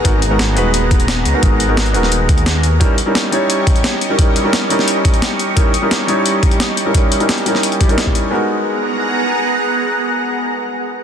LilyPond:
<<
  \new Staff \with { instrumentName = "Analog synth pad" } { \time 4/4 \key gis \minor \tempo 4 = 174 <b gis' fis'' ais''>1~ | <b gis' fis'' ais''>1 | <g' dis'' cis'''>1~ | <g' dis'' cis'''>1~ |
<g' dis'' cis'''>1~ | <g' dis'' cis'''>1 | <b gis' fis'' ais''>1~ | <b gis' fis'' ais''>1 | }
  \new Staff \with { instrumentName = "Felt piano" } { \time 4/4 \key gis \minor <gis b dis' fis' ais'>8 r16 <gis b dis' fis' ais'>8. <gis b dis' fis' b'>2~ <gis b dis' fis' b'>16 <gis b dis' fis' ais'>16 | <gis b dis' fis'>8. <gis b dis' fis' ais'>8. <gis b dis' fis' ais'>2~ <gis b dis' fis' ais'>8 | <g cis' dis' e' ais'>8 r16 <g cis' dis' e' ais'>8. <g cis' dis' e' cis''>2~ <g cis' dis' e' cis''>16 <g cis' dis' e' ais'>16 | <g cis' dis' e' ais'>8. <g cis' dis' e' ais'>8. <g cis' dis' e' ais'>2~ <g cis' dis' e' ais'>8 |
<g cis' dis' e' ais'>8 r16 <g cis' dis' e' ais'>8. <g cis' dis' e' cis''>2~ <g cis' dis' e' cis''>16 <g cis' dis' e' ais'>16 | <g cis' dis' e' ais'>8. <g cis' dis' e' ais'>8. <g cis' dis' e' ais'>4 <g cis' dis' e' g'>16 <g cis' dis' e' ais'>4~ <g cis' dis' e' ais'>16 | <gis b dis' fis' ais'>1~ | <gis b dis' fis' ais'>1 | }
  \new Staff \with { instrumentName = "Detuned saw bass" } { \clef bass \time 4/4 \key gis \minor gis,,4. dis,,2 cis,8 | gis,,4. dis,,4 dis,4. | r1 | r1 |
r1 | r1 | r1 | r1 | }
  \new DrumStaff \with { instrumentName = "Drums" } \drummode { \time 4/4 <hh bd>8 hh8 <hh sn>8 hh8 hh8 <hh bd>16 hh16 <hh sn>8 hh8 | <hh bd>8 hh8 <hh sn>16 hh16 hh16 sn16 hh8 <hh bd>16 hh16 <hh sn>8 hh8 | <hh bd>8 hh8 <hh sn>8 hh8 hh8 <hh bd>16 hh16 <hh sn>8 hh8 | <hh bd>8 hh8 <hh sn>8 hh16 sn16 hh8 <hh bd>16 hh16 <hh sn>8 hh8 |
<hh bd>8 hh8 <hh sn>8 hh8 hh8 <hh bd>16 hh16 <hh sn>8 hh8 | <hh bd>8 hh16 hh16 <hh sn>16 hh16 hh16 sn16 hh16 hh16 <hh bd>16 hh16 <hh sn>16 bd16 hh8 | r4 r4 r4 r4 | r4 r4 r4 r4 | }
>>